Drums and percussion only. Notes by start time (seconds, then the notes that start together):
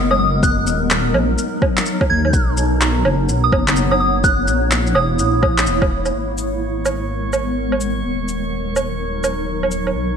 0.11 low woodblock
0.43 kick, shaker
0.67 shaker
0.91 clap, shaker
1.14 low woodblock
1.38 shaker
1.62 kick, low woodblock
1.77 clap, shaker
1.86 shaker
2.01 kick, low woodblock
2.25 low woodblock
2.33 kick, shaker
2.57 shaker
2.81 clap, shaker
3.05 low woodblock
3.29 shaker
3.52 kick, low woodblock
3.68 clap, shaker
3.76 shaker
3.92 low woodblock
4.24 kick, shaker
4.48 shaker
4.71 clap, shaker
4.87 shaker
4.95 low woodblock
5.19 shaker
5.43 kick, low woodblock
5.58 clap, shaker
5.66 shaker
5.82 kick, low woodblock
6.05 low woodblock, shaker
6.38 cabasa
6.85 cabasa, low woodblock
7.33 cabasa, low woodblock
7.72 low woodblock
7.81 cabasa
8.28 cabasa
8.76 cabasa, low woodblock
9.24 cabasa, low woodblock
9.63 low woodblock
9.71 cabasa
9.87 low woodblock